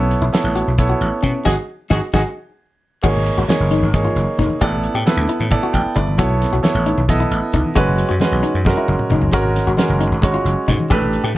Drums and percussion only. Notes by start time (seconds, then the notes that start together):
0.11 closed hi-hat
0.34 snare, closed hi-hat
0.56 closed hi-hat
0.78 kick, closed hi-hat
1.01 closed hi-hat
1.23 kick, snare, closed hi-hat
1.46 kick, snare
1.91 kick, snare
2.14 kick, snare
3.04 kick, crash, muted conga, low conga
3.15 low conga
3.26 closed hi-hat
3.38 low conga
3.49 snare, closed hi-hat, high conga, low conga
3.61 low conga
3.72 closed hi-hat
3.83 muted conga
3.94 kick, closed hi-hat, high conga, low conga
4.05 low conga
4.16 closed hi-hat
4.38 kick, snare, closed hi-hat, low conga
4.50 high conga
4.61 kick, closed hi-hat, muted conga, low conga
4.72 low conga
4.83 closed hi-hat
4.95 low conga
5.07 snare, closed hi-hat, high conga, low conga
5.17 low conga
5.29 closed hi-hat
5.40 muted conga
5.51 kick, closed hi-hat, high conga, low conga
5.62 low conga
5.74 kick, closed hi-hat
5.96 kick, closed hi-hat, low conga
6.07 high conga
6.18 kick, closed hi-hat, muted conga, low conga
6.30 low conga
6.42 snare, closed hi-hat
6.64 snare, closed hi-hat, high conga, low conga
6.75 low conga
6.87 closed hi-hat
6.98 muted conga
7.09 kick, closed hi-hat, high conga, low conga
7.20 low conga
7.32 closed hi-hat
7.53 kick, closed hi-hat, low conga
7.65 high conga
7.76 kick, closed hi-hat, muted conga
7.87 low conga
7.98 closed hi-hat
8.09 low conga
8.20 snare, closed hi-hat, high conga
8.31 low conga
8.44 closed hi-hat
8.65 kick, snare, high conga, low conga
8.77 low conga
8.88 high tom
8.99 mid tom, low conga
9.10 mid tom, low conga
9.21 floor tom, high conga
9.32 kick, closed hi-hat, muted conga, low conga
9.44 low conga
9.56 snare, closed hi-hat
9.66 low conga
9.77 snare, closed hi-hat, high conga, low conga
9.89 low conga
10.01 closed hi-hat
10.22 kick, closed hi-hat, high conga, low conga
10.34 low conga
10.46 closed hi-hat
10.68 kick, snare, closed hi-hat, low conga
10.79 high conga
10.90 kick, closed hi-hat, muted conga, low conga
11.02 low conga
11.13 closed hi-hat
11.24 low conga